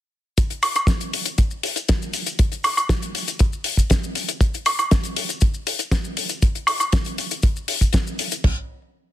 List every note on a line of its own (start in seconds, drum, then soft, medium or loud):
0.38 kick loud
0.38 closed hi-hat medium
0.38 maracas medium
0.38 shaker soft
0.50 closed hi-hat medium
0.50 maracas soft
0.63 open hi-hat loud
0.63 high woodblock medium
0.63 shaker medium
0.75 closed hi-hat medium
0.75 high woodblock medium
0.75 maracas medium
0.75 shaker medium
0.87 kick loud
0.87 snare loud
0.87 closed hi-hat medium
0.87 maracas medium
0.87 shaker medium
1.01 closed hi-hat medium
1.01 maracas soft
1.13 open hi-hat loud
1.13 shaker medium
1.26 closed hi-hat medium
1.26 maracas medium
1.26 shaker medium
1.38 kick loud
1.38 closed hi-hat medium
1.38 maracas medium
1.38 shaker soft
1.51 maracas soft
1.63 open hi-hat loud
1.63 shaker medium
1.76 closed hi-hat medium
1.76 maracas medium
1.76 shaker medium
1.89 kick loud
1.89 snare loud
1.89 closed hi-hat medium
1.89 shaker soft
1.89 maracas medium
2.02 maracas soft
2.13 open hi-hat medium
2.13 shaker medium
2.26 closed hi-hat medium
2.26 maracas medium
2.26 shaker medium
2.39 kick loud
2.39 closed hi-hat medium
2.39 maracas medium
2.39 shaker medium
2.52 closed hi-hat medium
2.52 maracas soft
2.64 open hi-hat loud
2.64 high woodblock medium
2.64 shaker medium
2.77 closed hi-hat medium
2.77 high woodblock medium
2.77 maracas medium
2.77 shaker medium
2.89 kick loud
2.89 snare loud
2.89 closed hi-hat medium
2.89 maracas medium
2.89 shaker medium
3.02 closed hi-hat soft
3.02 maracas soft
3.15 open hi-hat loud
3.15 shaker medium
3.28 closed hi-hat medium
3.28 maracas medium
3.28 shaker medium
3.39 kick loud
3.39 closed hi-hat medium
3.39 maracas medium
3.39 shaker medium
3.53 maracas soft
3.64 open hi-hat loud
3.64 shaker medium
3.77 kick medium
3.77 closed hi-hat medium
3.77 maracas medium
3.77 shaker medium
3.90 kick loud
3.90 snare loud
3.90 closed hi-hat medium
3.90 maracas medium
3.90 shaker medium
4.04 maracas soft
4.15 open hi-hat loud
4.15 shaker medium
4.29 closed hi-hat medium
4.29 maracas medium
4.29 shaker medium
4.41 kick loud
4.41 closed hi-hat medium
4.41 maracas medium
4.41 shaker soft
4.54 closed hi-hat medium
4.54 maracas soft
4.66 open hi-hat loud
4.66 high woodblock medium
4.66 shaker medium
4.79 closed hi-hat medium
4.79 high woodblock medium
4.79 maracas medium
4.79 shaker medium
4.91 kick loud
4.91 snare loud
4.91 closed hi-hat medium
4.91 shaker medium
4.91 maracas medium
5.03 closed hi-hat medium
5.03 maracas soft
5.17 open hi-hat loud
5.17 shaker medium
5.29 closed hi-hat medium
5.29 maracas medium
5.29 shaker medium
5.41 kick loud
5.41 closed hi-hat medium
5.41 maracas medium
5.41 shaker soft
5.54 maracas soft
5.67 open hi-hat loud
5.67 shaker medium
5.79 closed hi-hat medium
5.79 maracas medium
5.79 shaker medium
5.91 kick loud
5.91 snare loud
5.91 closed hi-hat medium
5.91 maracas medium
5.91 shaker medium
6.04 maracas soft
6.17 open hi-hat loud
6.17 shaker medium
6.29 closed hi-hat medium
6.29 maracas medium
6.29 shaker medium
6.42 kick loud
6.42 closed hi-hat medium
6.42 maracas medium
6.42 shaker soft
6.55 closed hi-hat soft
6.55 maracas soft
6.67 open hi-hat loud
6.67 high woodblock medium
6.67 shaker medium
6.80 closed hi-hat medium
6.80 high woodblock medium
6.80 maracas medium
6.80 shaker medium
6.92 kick loud
6.92 snare loud
6.92 closed hi-hat medium
6.92 maracas medium
6.92 shaker medium
7.05 closed hi-hat medium
7.05 maracas soft
7.18 open hi-hat loud
7.18 shaker medium
7.31 closed hi-hat medium
7.31 maracas medium
7.31 shaker medium
7.42 kick loud
7.42 closed hi-hat medium
7.42 maracas medium
7.42 shaker soft
7.56 maracas soft
7.68 open hi-hat loud
7.68 shaker medium
7.81 kick medium
7.81 closed hi-hat medium
7.81 maracas medium
7.81 shaker medium
7.93 kick loud
7.93 snare loud
7.93 closed hi-hat medium
7.93 maracas medium
7.93 shaker medium
8.07 maracas soft
8.19 open hi-hat loud
8.19 shaker medium
8.31 closed hi-hat medium
8.31 maracas medium
8.31 shaker medium
8.44 kick loud
8.44 floor tom loud
8.44 splash medium